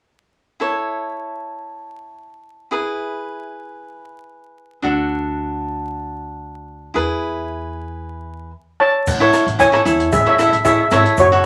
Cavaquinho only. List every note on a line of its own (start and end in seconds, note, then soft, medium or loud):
0.60 2.68 E4 medium
0.60 2.68 A4 medium
0.60 2.69 C#5 medium
2.71 4.79 E4 medium
2.71 4.80 G#4 soft
2.71 4.80 B4 medium
4.82 6.91 D4 medium
4.82 6.91 F#4 medium
4.82 6.92 A4 medium
6.94 8.50 E4 medium
6.94 8.51 G#4 medium
6.94 8.51 B4 medium
9.20 9.44 E4 medium
9.20 9.44 A4 medium
9.20 9.45 C#5 medium
9.59 9.67 E4 medium
9.59 9.68 A4 medium
9.59 9.68 C#5 medium
9.72 9.80 E4 medium
9.72 9.81 A4 medium
9.72 9.81 C#5 medium
9.85 10.10 E4 medium
9.85 10.10 A4 medium
9.85 10.10 C#5 medium
10.26 10.34 E4 medium
10.26 10.34 A4 medium
10.26 10.34 C#5 medium
10.38 10.55 E4 medium
10.38 10.55 A4 medium
10.38 10.55 E5 medium
10.65 10.81 E4 medium
10.65 10.81 A4 medium
10.65 10.82 C#5 medium
10.91 11.15 E4 medium
10.91 11.15 A4 medium
10.91 11.16 C#5 medium
11.32 11.46 F#4 medium
11.32 11.46 A4 medium
11.32 11.46 C#5 medium